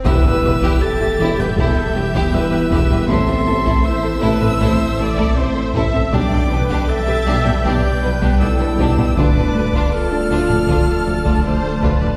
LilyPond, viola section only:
\new Staff \with { instrumentName = "Viola section" } { \time 4/4 \key e \phrygian \tempo 4 = 79 b'4 g'4 a'8 g'8 b'8 b'8 | a'4 c''8 b'8 c''8 d''8 c''8 e''8 | d''8 b'8 e''4 d''8 b'8 a'8 g'8 | b'4 a'2 c''8 b'8 | }